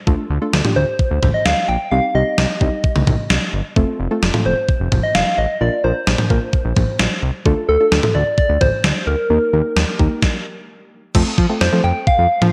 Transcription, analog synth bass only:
0.07 D2
0.30 D2
0.53 D2
0.76 D2
1.11 D2
1.23 D2
1.46 D2
1.69 A#1
1.92 C2
2.15 C2
2.38 C2
2.61 C2
2.96 C2
3.07 C2
3.30 C2
3.53 G1
3.76 F1
3.99 F1
4.23 F1
4.46 F1
4.80 F1
4.92 F1
5.15 F1
5.38 A1
5.61 A#1
5.84 A#1
6.07 A#1
6.30 A#1
6.65 A#1
6.76 A#1
6.99 A#1
7.22 C2
7.46 D2
7.69 D2
7.92 D2
8.15 D2
8.49 D2
8.61 D2
8.84 D2
9.07 D2
9.30 D#2
9.53 D#2
9.76 D#2
9.99 D#2
11.15 F2
11.38 F3
11.61 F2
11.72 F3
11.84 F2
12.19 F2
12.42 F3

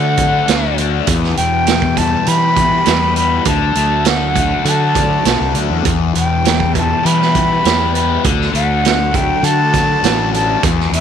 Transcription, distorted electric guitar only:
Already playing: D3 A3 F#4
0.19 D4
0.48 F#4
0.78 D4
1.08 E2
1.37 B2
1.67 E3
1.97 G3
2.26 G4
2.57 B3
2.86 G4
3.15 B3
3.46 D3
3.76 A3
4.05 D3
4.35 A3
4.65 F#4
4.96 D4
5.26 F#4
5.55 D4
5.85 E2
6.15 B2
6.44 E3
6.74 G3
7.03 G4
7.34 B3
7.64 G4
7.94 B3
8.24 D3
8.53 A3
8.83 D3
9.12 A3
9.43 F#4
9.73 D4
10.04 F#4
10.34 D4
10.63 E2
10.93 B2

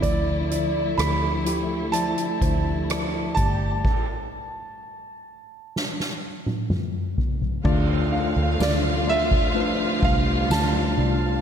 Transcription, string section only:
Already playing: D3 E4
0.04 F3 A3
3.37 G3 G4
7.63 D3 F3 A3 F4
9.55 G3

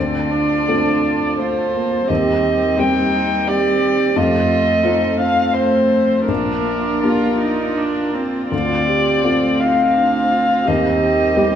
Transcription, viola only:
Already playing: C4
0.31 D4
1.39 A3
1.74 A#3
2.09 C4
3.49 C4
4.17 A3
5.57 A3
6.28 D4
7.03 F4
7.40 D#4
7.78 D4
8.15 C4
8.52 C4

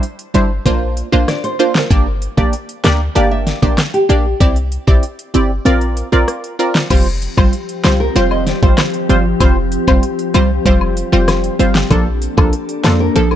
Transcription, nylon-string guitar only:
1.28 D5
1.44 C5
1.75 A#4
3.16 F5
3.31 E5
3.47 D5
3.63 C5
3.78 A#4
3.94 G4
8.00 A#4
8.16 C5
8.31 D#5
8.47 D5
8.63 C5
12.84 C5
13.00 A#4
13.16 A4
13.31 A#4

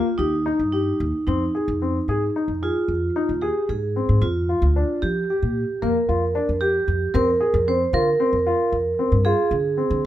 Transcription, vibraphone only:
Already playing: F4
0.18 D#4
0.72 D#4
1.27 D#4
2.63 F4
3.42 G4
3.69 G#4
4.22 F4
5.02 G4
5.82 A#4
6.61 G4
7.14 A#4
7.68 C5
7.94 A#4
9.25 G#4

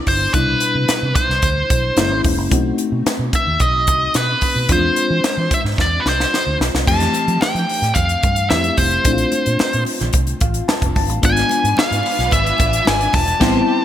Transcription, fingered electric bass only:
0.07 G1
0.34 C2
0.75 C3
0.89 muted fingered electric bass stroke
1.03 C3
1.29 C2
1.43 D2
1.71 B1
1.96 F#1
2.11 G#1
2.25 E1
2.38 F#1
2.52 B1
2.92 B2
3.06 muted fingered electric bass stroke
3.19 B2
3.47 D#2
3.60 B1
3.88 C2
4.15 B2
4.56 B2
4.69 E2
5.10 E3
5.24 muted fingered electric bass stroke
5.37 E3
5.64 G#2
5.78 E2
6.05 C2
6.47 D2
6.60 B1
6.74 C2
6.88 F2
7.28 F3
7.42 muted fingered electric bass stroke
7.55 F3
7.82 A2
7.96 F2
8.24 G2
8.51 F2
8.78 F1
9.05 A#1
9.47 A#2
9.61 muted fingered electric bass stroke
9.74 A#2
10.01 A#1
10.14 C2
10.41 A1
10.82 F1
10.96 G1
11.09 A1
11.23 G#1
11.64 G#2
11.78 muted fingered electric bass stroke
11.91 G#2
12.19 B1
12.32 G#1
12.60 A1
12.87 G#1
13.14 E1
13.41 A1

